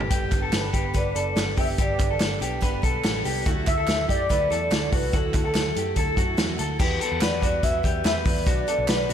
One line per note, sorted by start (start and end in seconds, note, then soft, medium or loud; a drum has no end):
0.00 0.24 G1 medium
0.00 0.11 G3 soft
0.00 0.11 B3 soft
0.00 0.11 D4 soft
0.00 floor tom medium
0.10 0.32 G2 medium
0.10 0.32 D3 medium
0.10 0.33 G3 medium
0.10 0.32 B3 medium
0.10 0.31 D4 medium
0.10 0.40 G4 medium
0.10 kick loud
0.10 closed hi-hat medium
0.32 0.49 G1 medium
0.32 0.52 G3 soft
0.32 0.52 B3 soft
0.32 0.53 D4 medium
0.32 kick medium
0.32 clap medium
0.32 closed hi-hat medium
0.42 0.72 A4 medium
0.52 0.70 G1 medium
0.52 0.74 D3 medium
0.52 0.74 G3 medium
0.52 0.73 B3 medium
0.52 0.72 D4 medium
0.52 0.98 B4 medium
0.52 snare loud
0.52 clap medium
0.52 closed hi-hat medium
0.73 0.91 G1 medium
0.73 0.93 G3 soft
0.73 0.93 B3 soft
0.73 0.94 D4 soft
0.73 0.94 G4 medium
0.73 kick medium
0.73 closed hi-hat medium
0.94 1.12 G1 medium
0.94 1.15 G2 medium
0.94 1.16 D3 medium
0.94 1.16 G3 medium
0.94 1.15 B3 medium
0.94 1.14 D4 medium
0.94 1.15 B4 medium
0.94 1.37 D5 medium
0.94 kick medium
0.94 closed hi-hat medium
1.15 1.33 F#1 medium
1.15 1.35 G3 soft
1.15 1.36 B3 soft
1.15 1.36 D4 soft
1.15 1.55 A4 medium
1.15 closed hi-hat medium
1.36 1.54 G1 medium
1.36 1.57 D3 medium
1.36 1.57 G3 medium
1.36 1.57 B3 medium
1.36 1.55 D4 medium
1.36 snare loud
1.36 clap medium
1.36 closed hi-hat medium
1.57 1.75 F#1 medium
1.57 1.78 G3 soft
1.57 1.78 B3 soft
1.57 1.78 D4 medium
1.57 1.78 G4 medium
1.57 1.68 E5 loud
1.57 kick medium
1.57 open hi-hat medium
1.78 1.96 G1 medium
1.78 1.99 G2 medium
1.78 2.00 D3 medium
1.78 2.00 G3 medium
1.78 1.99 B3 medium
1.78 1.97 D4 medium
1.78 2.08 G4 medium
1.78 2.59 D5 medium
1.78 kick loud
1.78 closed hi-hat medium
1.99 2.17 G1 medium
1.99 2.19 G3 soft
1.99 2.20 B3 soft
1.99 2.20 D4 medium
1.99 kick medium
1.99 clap medium
1.99 closed hi-hat medium
2.11 2.40 A4 medium
2.20 2.38 G1 medium
2.20 2.41 D3 medium
2.20 2.41 G3 medium
2.20 2.40 B3 medium
2.20 2.39 D4 medium
2.20 snare medium
2.20 clap medium
2.20 closed hi-hat medium
2.40 2.58 B1 medium
2.40 2.60 G3 soft
2.40 2.60 B3 medium
2.40 2.61 D4 medium
2.40 2.62 G4 medium
2.40 closed hi-hat medium
2.61 2.79 G1 medium
2.61 2.82 G2 medium
2.61 2.83 D3 medium
2.61 2.83 G3 medium
2.61 2.82 B3 medium
2.61 2.81 D4 medium
2.61 2.83 B4 medium
2.61 kick medium
2.61 closed hi-hat medium
2.82 3.00 B1 medium
2.82 3.02 G3 soft
2.82 3.03 B3 medium
2.82 3.04 D4 medium
2.82 3.23 A4 medium
2.82 kick medium
2.82 closed hi-hat medium
3.03 3.21 A1 medium
3.03 3.25 D3 medium
3.03 3.25 G3 medium
3.03 3.24 B3 medium
3.03 3.23 D4 medium
3.03 snare loud
3.03 clap medium
3.03 closed hi-hat medium
3.24 3.42 C2 medium
3.24 3.46 G3 soft
3.24 3.46 B3 medium
3.24 3.46 D4 medium
3.24 3.46 G4 medium
3.24 open hi-hat medium
3.46 3.63 D2 loud
3.46 3.67 D3 medium
3.46 3.67 F#3 medium
3.46 3.66 A3 medium
3.46 3.65 E4 medium
3.46 3.76 F#4 medium
3.46 kick loud
3.46 closed hi-hat medium
3.66 3.84 D2 medium
3.66 3.87 F#3 soft
3.66 3.88 A3 soft
3.66 3.87 E4 medium
3.66 4.06 E5 loud
3.66 kick medium
3.66 clap medium
3.66 closed hi-hat medium
3.78 4.07 A4 medium
3.87 4.05 D2 medium
3.87 4.09 D3 medium
3.87 4.09 F#3 medium
3.87 4.08 A3 medium
3.87 4.07 E4 medium
3.87 snare loud
3.87 clap medium
3.87 closed hi-hat medium
4.08 4.26 F#2 medium
4.08 4.29 F#3 soft
4.08 4.29 A3 soft
4.08 4.29 E4 medium
4.08 4.30 G4 medium
4.08 4.89 D5 loud
4.08 kick medium
4.08 closed hi-hat medium
4.29 4.47 D2 loud
4.29 4.50 D3 medium
4.29 4.51 F#3 medium
4.29 4.50 A3 medium
4.29 4.49 E4 medium
4.29 4.50 B4 medium
4.29 kick medium
4.29 closed hi-hat medium
4.50 4.68 E2 medium
4.50 4.70 F#3 soft
4.50 4.71 A3 medium
4.50 4.71 E4 medium
4.50 4.90 A4 medium
4.50 closed hi-hat medium
4.70 4.88 D2 medium
4.70 4.92 D3 medium
4.70 4.92 F#3 medium
4.70 4.92 A3 medium
4.70 4.91 E4 medium
4.70 snare loud
4.70 clap medium
4.70 closed hi-hat medium
4.92 5.10 C2 medium
4.92 5.12 F#3 soft
4.92 5.12 A3 soft
4.92 5.12 E4 medium
4.92 5.12 F#4 medium
4.92 5.17 B4 medium
4.92 kick loud
4.92 open hi-hat medium
5.12 5.30 D2 loud
5.12 5.34 D3 medium
5.12 5.34 F#3 medium
5.12 5.34 A3 medium
5.12 5.33 E4 medium
5.12 5.43 F#4 loud
5.12 6.39 A4 medium
5.12 kick loud
5.12 closed hi-hat medium
5.34 5.51 D2 medium
5.34 5.54 F#3 soft
5.34 5.54 A3 soft
5.34 5.55 E4 medium
5.34 kick medium
5.34 clap medium
5.34 closed hi-hat medium
5.45 5.76 A4 medium
5.54 5.72 D2 loud
5.54 5.76 D3 medium
5.54 5.76 F#3 medium
5.54 5.75 A3 medium
5.54 5.74 E4 medium
5.54 snare medium
5.54 clap medium
5.54 closed hi-hat medium
5.75 5.93 F#2 medium
5.75 5.95 F#3 soft
5.75 5.96 A3 soft
5.75 5.96 E4 medium
5.75 5.97 G4 medium
5.75 closed hi-hat medium
5.96 6.14 D2 loud
5.96 6.17 D3 medium
5.96 6.17 F#3 medium
5.96 6.16 A3 medium
5.96 6.15 E4 medium
5.96 6.17 A4 medium
5.96 kick medium
5.96 closed hi-hat medium
6.16 6.34 F#2 medium
6.16 6.37 F#3 medium
6.16 6.37 A3 medium
6.16 6.38 E4 medium
6.16 6.57 F#4 medium
6.16 kick medium
6.16 closed hi-hat medium
6.37 6.56 E2 medium
6.37 6.59 D3 medium
6.37 6.59 F#3 medium
6.37 6.58 A3 medium
6.37 6.57 E4 medium
6.37 snare loud
6.37 clap medium
6.37 closed hi-hat medium
6.58 6.76 D2 medium
6.58 6.79 F#3 medium
6.58 6.80 A3 medium
6.58 6.79 E4 medium
6.58 6.79 A4 medium
6.58 closed hi-hat medium
6.79 6.97 E2 loud
6.79 7.00 E3 medium
6.79 7.00 G3 medium
6.79 7.00 B3 medium
6.79 6.99 F#4 medium
6.79 7.00 G4 medium
6.79 7.23 B4 medium
6.79 kick loud
6.79 crash medium
7.00 7.20 G3 soft
7.00 7.21 B3 soft
7.00 7.21 F#4 medium
7.00 7.21 A4 medium
7.00 closed hi-hat medium
7.12 7.20 E2 medium
7.20 7.39 E2 loud
7.20 7.42 E3 medium
7.20 7.42 G3 medium
7.20 7.41 B3 medium
7.20 7.40 F#4 medium
7.20 7.43 B4 medium
7.20 7.63 D5 loud
7.20 snare loud
7.20 clap medium
7.20 closed hi-hat medium
7.41 7.60 E2 medium
7.41 7.62 G3 soft
7.41 7.63 B3 soft
7.41 7.63 F#4 soft
7.41 7.82 F#4 medium
7.41 kick medium
7.41 closed hi-hat medium
7.63 7.80 E2 loud
7.63 7.84 E3 medium
7.63 7.84 G3 medium
7.63 7.83 B3 medium
7.63 7.82 F#4 medium
7.63 8.02 E5 loud
7.63 kick medium
7.63 closed hi-hat medium
7.83 8.01 E2 loud
7.83 8.03 G3 soft
7.83 8.04 B3 soft
7.83 8.04 F#4 medium
7.83 8.05 G4 medium
7.83 kick medium
7.83 closed hi-hat medium
8.04 8.22 E2 medium
8.04 8.25 E3 medium
8.04 8.26 G3 medium
8.04 8.25 B3 medium
8.04 8.24 F#4 medium
8.04 8.44 B4 medium
8.04 8.15 E5 loud
8.04 snare loud
8.04 clap medium
8.04 closed hi-hat medium
8.25 8.43 E2 loud
8.25 8.46 G3 soft
8.25 8.45 B3 soft
8.25 8.46 F#4 medium
8.25 9.13 D5 loud
8.25 kick loud
8.25 open hi-hat medium
8.46 8.64 B1 loud
8.46 8.67 B2 medium
8.46 8.67 F#3 medium
8.46 8.67 B3 medium
8.46 8.66 D4 medium
8.46 8.68 F#4 medium
8.46 kick loud
8.46 closed hi-hat loud
8.67 8.87 F#3 soft
8.67 8.88 B3 medium
8.67 8.88 D4 medium
8.67 8.88 A4 medium
8.67 closed hi-hat medium
8.78 8.87 B1 medium
8.88 9.06 B1 loud
8.88 9.09 B2 medium
8.88 9.09 F#3 medium
8.88 9.09 B3 medium
8.88 9.08 D4 medium
8.88 9.10 B4 medium
8.88 snare loud
8.88 clap medium
8.88 closed hi-hat medium
9.09 9.13 B1 loud
9.09 9.13 B3 medium
9.09 9.13 D4 medium
9.09 9.13 F#4 medium
9.09 closed hi-hat medium